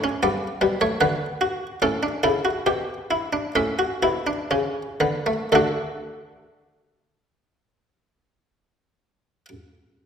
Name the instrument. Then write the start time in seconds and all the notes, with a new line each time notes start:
harpsichord
0.04 C#4
0.23 G2 B3 D5
0.61 B2 G3
0.81 A3 C#5
1.01 D3 B3 B4
1.41 F#4
1.82 A2 C#4 A4
2.03 D4
2.23 C#3 E4 A4
2.45 F#4
2.66 B2 G4
3.11 E4
3.33 D4
3.56 A2 C#4 E5
3.79 F#4
4.03 B2 E4
4.27 D4
4.51 C#3 C#4
5.00 D3 B3
5.26 A3
5.52 D3 A3 D4 F#4 A4